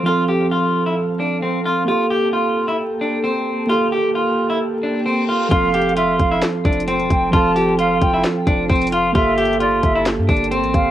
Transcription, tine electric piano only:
X:1
M:4/4
L:1/8
Q:1/4=132
K:F
V:1 name="Tine electric piano"
[F,CA]8 | [B,GA]8 | [B,GA]8 | [F,CA]8 |
[F,CA]8 | [B,GA]8 |]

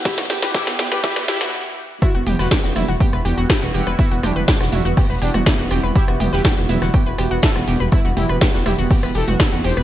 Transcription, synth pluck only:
X:1
M:4/4
L:1/16
Q:1/4=122
K:Em
V:1 name="Synth pluck"
E F G B E F G B E F E F z4 | E F G B G F E F G B G F E F G B | E F G B G F E F G B G F E F G B | E F G B G F E F G B G F E F G B |
E F G B G F E F G B G F E F G B |]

